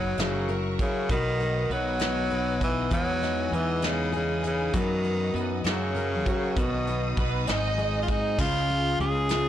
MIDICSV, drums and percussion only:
0, 0, Header, 1, 2, 480
1, 0, Start_track
1, 0, Key_signature, 5, "major"
1, 0, Tempo, 607903
1, 865, Time_signature, 6, 3, 24, 8
1, 7491, End_track
2, 0, Start_track
2, 0, Title_t, "Drums"
2, 139, Note_on_c, 9, 42, 98
2, 155, Note_on_c, 9, 38, 113
2, 218, Note_off_c, 9, 42, 0
2, 234, Note_off_c, 9, 38, 0
2, 382, Note_on_c, 9, 42, 49
2, 461, Note_off_c, 9, 42, 0
2, 626, Note_on_c, 9, 36, 94
2, 626, Note_on_c, 9, 42, 63
2, 705, Note_off_c, 9, 36, 0
2, 705, Note_off_c, 9, 42, 0
2, 863, Note_on_c, 9, 42, 92
2, 864, Note_on_c, 9, 36, 107
2, 942, Note_off_c, 9, 42, 0
2, 943, Note_off_c, 9, 36, 0
2, 1104, Note_on_c, 9, 42, 51
2, 1183, Note_off_c, 9, 42, 0
2, 1348, Note_on_c, 9, 42, 50
2, 1427, Note_off_c, 9, 42, 0
2, 1573, Note_on_c, 9, 42, 92
2, 1590, Note_on_c, 9, 38, 116
2, 1652, Note_off_c, 9, 42, 0
2, 1669, Note_off_c, 9, 38, 0
2, 1821, Note_on_c, 9, 42, 47
2, 1900, Note_off_c, 9, 42, 0
2, 2062, Note_on_c, 9, 42, 59
2, 2063, Note_on_c, 9, 36, 94
2, 2141, Note_off_c, 9, 36, 0
2, 2141, Note_off_c, 9, 42, 0
2, 2300, Note_on_c, 9, 42, 99
2, 2301, Note_on_c, 9, 36, 108
2, 2379, Note_off_c, 9, 42, 0
2, 2380, Note_off_c, 9, 36, 0
2, 2545, Note_on_c, 9, 42, 49
2, 2553, Note_on_c, 9, 38, 35
2, 2624, Note_off_c, 9, 42, 0
2, 2632, Note_off_c, 9, 38, 0
2, 2790, Note_on_c, 9, 42, 46
2, 2869, Note_off_c, 9, 42, 0
2, 3016, Note_on_c, 9, 42, 95
2, 3032, Note_on_c, 9, 38, 120
2, 3095, Note_off_c, 9, 42, 0
2, 3111, Note_off_c, 9, 38, 0
2, 3262, Note_on_c, 9, 42, 49
2, 3341, Note_off_c, 9, 42, 0
2, 3503, Note_on_c, 9, 42, 61
2, 3582, Note_off_c, 9, 42, 0
2, 3738, Note_on_c, 9, 42, 95
2, 3741, Note_on_c, 9, 36, 103
2, 3817, Note_off_c, 9, 42, 0
2, 3820, Note_off_c, 9, 36, 0
2, 3983, Note_on_c, 9, 42, 51
2, 4062, Note_off_c, 9, 42, 0
2, 4229, Note_on_c, 9, 42, 45
2, 4308, Note_off_c, 9, 42, 0
2, 4457, Note_on_c, 9, 42, 94
2, 4473, Note_on_c, 9, 38, 117
2, 4536, Note_off_c, 9, 42, 0
2, 4552, Note_off_c, 9, 38, 0
2, 4704, Note_on_c, 9, 42, 51
2, 4783, Note_off_c, 9, 42, 0
2, 4945, Note_on_c, 9, 36, 92
2, 4948, Note_on_c, 9, 42, 58
2, 5024, Note_off_c, 9, 36, 0
2, 5027, Note_off_c, 9, 42, 0
2, 5185, Note_on_c, 9, 36, 105
2, 5185, Note_on_c, 9, 42, 96
2, 5264, Note_off_c, 9, 36, 0
2, 5264, Note_off_c, 9, 42, 0
2, 5425, Note_on_c, 9, 42, 51
2, 5504, Note_off_c, 9, 42, 0
2, 5664, Note_on_c, 9, 36, 97
2, 5669, Note_on_c, 9, 42, 48
2, 5743, Note_off_c, 9, 36, 0
2, 5748, Note_off_c, 9, 42, 0
2, 5899, Note_on_c, 9, 42, 91
2, 5916, Note_on_c, 9, 38, 125
2, 5978, Note_off_c, 9, 42, 0
2, 5995, Note_off_c, 9, 38, 0
2, 6144, Note_on_c, 9, 42, 48
2, 6223, Note_off_c, 9, 42, 0
2, 6383, Note_on_c, 9, 36, 97
2, 6383, Note_on_c, 9, 42, 60
2, 6462, Note_off_c, 9, 36, 0
2, 6462, Note_off_c, 9, 42, 0
2, 6621, Note_on_c, 9, 49, 107
2, 6622, Note_on_c, 9, 36, 112
2, 6700, Note_off_c, 9, 49, 0
2, 6701, Note_off_c, 9, 36, 0
2, 6865, Note_on_c, 9, 42, 51
2, 6944, Note_off_c, 9, 42, 0
2, 7107, Note_on_c, 9, 42, 50
2, 7186, Note_off_c, 9, 42, 0
2, 7334, Note_on_c, 9, 42, 103
2, 7351, Note_on_c, 9, 38, 119
2, 7413, Note_off_c, 9, 42, 0
2, 7430, Note_off_c, 9, 38, 0
2, 7491, End_track
0, 0, End_of_file